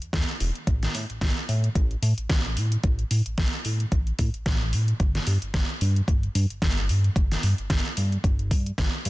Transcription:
0.01 E2, closed hi-hat
0.13 E2, kick, snare, closed hi-hat
0.28 closed hi-hat
0.40 E1, open hi-hat
0.55 closed hi-hat
0.67 A1, kick, closed hi-hat
0.83 snare, closed hi-hat
0.95 A2, open hi-hat
1.10 A1, closed hi-hat
1.21 A1, kick, snare, closed hi-hat
1.37 closed hi-hat
1.49 A2, open hi-hat
1.64 closed hi-hat
1.75 A1, kick, closed hi-hat
1.91 closed hi-hat
2.02 A2, open hi-hat
2.18 A1, closed hi-hat
2.29 A1, kick, snare, closed hi-hat
2.45 closed hi-hat
2.56 A2, open hi-hat
2.72 closed hi-hat
2.83 A1, kick, closed hi-hat
2.99 closed hi-hat
3.11 A2, open hi-hat
3.26 A1, closed hi-hat
3.38 A1, kick, snare, closed hi-hat
3.53 closed hi-hat
3.65 A2, open hi-hat
3.80 closed hi-hat
3.92 A1, kick, closed hi-hat
4.07 closed hi-hat
4.19 A2, kick, open hi-hat
4.34 A1, closed hi-hat
4.46 A1, kick, snare, closed hi-hat
4.61 closed hi-hat
4.73 A2, open hi-hat
4.88 closed hi-hat
5.00 G1, kick, closed hi-hat
5.15 snare, closed hi-hat
5.27 G2, open hi-hat
5.42 G1, closed hi-hat
5.54 G1, kick, snare, closed hi-hat
5.69 closed hi-hat
5.81 G2, open hi-hat
5.96 closed hi-hat
6.08 G1, kick, closed hi-hat
6.23 closed hi-hat
6.35 G2, open hi-hat
6.50 G1, closed hi-hat
6.62 G1, kick, snare, closed hi-hat
6.77 closed hi-hat
6.89 G2, open hi-hat
7.04 closed hi-hat
7.16 G1, kick, closed hi-hat
7.32 snare, open hi-hat
7.43 G2, open hi-hat
7.58 G1, closed hi-hat
7.70 G1, kick, snare, closed hi-hat
7.85 closed hi-hat
7.97 G2, open hi-hat
8.12 closed hi-hat
8.24 G1, kick, closed hi-hat
8.39 closed hi-hat
8.51 G2, kick, open hi-hat
8.66 closed hi-hat
8.78 G1, kick, snare, closed hi-hat
8.93 closed hi-hat
9.05 G2, open hi-hat

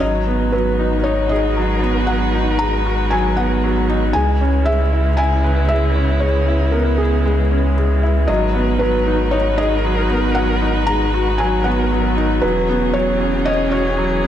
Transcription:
0.00 G#1 F#3 G#3 D#4 F#4 B4 D#5
0.28 B3
0.52 F#3 B4
0.79 D#4
1.04 D#4 C#5
1.29 G#4 D#5
1.57 F#3
1.83 B3
2.07 F#3 F#5
2.34 D#4
2.59 G#3 A#5
2.86 F#4
3.10 F#3 G#5
3.37 B3 F#5
3.64 F#3
3.89 D#4
4.13 C#2 C#3 G#3 B3 E4 G#5
4.41 C#4
4.65 G#3 E5
4.93 E4
5.17 E4 G#5
5.44 B4
5.69 G#3 E5
5.96 C#4
6.20 G#3 C#5
6.48 E4
6.72 B3 A#4
6.98 G#4
7.25 G#3
7.51 C#4
7.78 G#3
8.03 E4
8.28 G#1 F#3 D#4 F#4 B4 D#5
8.55 B3
8.79 F#3 B4
9.07 D#4
9.31 D#4 C#5
9.58 G#4 D#5
9.85 F#3
10.10 B3
10.35 F#3 F#5
10.62 D#4
10.87 G#3 A#5
11.14 F#4
11.38 F#3 G#5
11.64 B3 F#5
11.91 F#3
12.17 D#4
12.42 E1 E3 F#3 C#4 G#4 B4
12.69 B3
12.93 F#3 C#5
13.21 C#4
13.45 C#4 D#5
13.71 F#4 C#5
13.98 F#3
14.24 B3

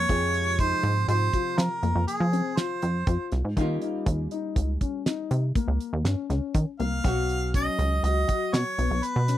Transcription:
Already playing: C#5
0.09 F2 C3 F3 G#3 F4 G#4, kick, closed hi-hat
0.34 closed hi-hat
0.59 D#4 C5, kick, closed hi-hat
0.83 G#2, closed hi-hat
1.08 G#2 F4 C5, closed hi-hat
1.33 F4, kick, closed hi-hat
1.58 F3 A#4, snare, closed hi-hat
1.83 F2 A#3, closed hi-hat
1.95 F2
2.07 G#4, closed hi-hat
2.20 F3
2.33 C4, closed hi-hat
2.57 F4 C5, snare, closed hi-hat
2.82 F2, closed hi-hat
3.07 F2 F4, kick, closed hi-hat
3.32 C2, snare, closed hi-hat
3.45 G#2
3.57 D#2 G3 A#3 C#4 D#4 F4, kick, closed hi-hat
3.82 D#4, closed hi-hat
4.06 D#2, kick, closed hi-hat
4.31 D#4, closed hi-hat
4.56 C#2, kick, closed hi-hat
4.81 C#4, kick, closed hi-hat
5.06 D#4, snare, closed hi-hat
5.31 C3, closed hi-hat
5.55 A#3, kick, closed hi-hat
5.68 C#2
5.80 closed hi-hat
5.93 D#2
6.05 G2 C#4, snare, closed hi-hat
6.30 C#2 C#4, snare, closed hi-hat
6.54 D#3, kick, closed hi-hat
6.79 C2 A#3 F5, closed hi-hat
7.04 B1 F#3 B3 C#4 F#4, kick, closed hi-hat
7.29 closed hi-hat
7.54 C#4 D#5, kick, snare, closed hi-hat
7.79 C#2, closed hi-hat
8.03 C#2 F#4 D#5, closed hi-hat
8.28 F#4, kick, closed hi-hat
8.53 B2 C#5, snare, closed hi-hat
8.78 B1 B3, closed hi-hat
8.91 B1
9.03 B4, closed hi-hat
9.16 B2
9.28 C#4, snare, closed hi-hat

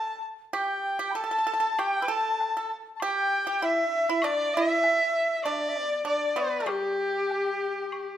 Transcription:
Already playing: A4 A5
0.08 A5
0.53 G4 G5, high woodblock
0.99 G4
1.11 A4 B5
1.16 A5
1.24 A4
1.31 A4
1.39 A4
1.47 A4
1.53 A4
1.60 A4
1.79 G4 G5, high woodblock
1.97 G5
2.01 B4 E6
2.06 A4 B5 D6
2.11 A5
2.40 low woodblock
2.57 A4
2.96 A5
3.00 G4 G5, high woodblock
3.04 G5
3.47 G4
3.62 E4 E5
3.89 D4
4.09 E4
4.22 D4 D5, high woodblock
4.53 E4 E5
4.83 low woodblock
5.44 D4 D5, high woodblock
5.53 E5
5.61 D5
5.69 E5
5.78 D5
5.84 B3
6.05 D4 D5
6.36 B3 B4
6.60 A3
6.66 G3 G4, high woodblock
7.30 low woodblock
7.92 high woodblock

